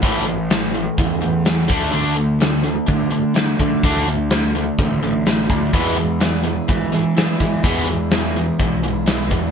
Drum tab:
HH |x---x---x---x---|x---x---x---x---|x---x---x---x---|x---x---x---x---|
SD |----o-------o---|----o-------o---|-o--o-----o-o---|----o-----o-o---|
BD |o-------o-----o-|--------o-----o-|o-------o-----o-|o-------o-----o-|

HH |x---x---x---x---|
SD |----o-------o---|
BD |o-------o-----o-|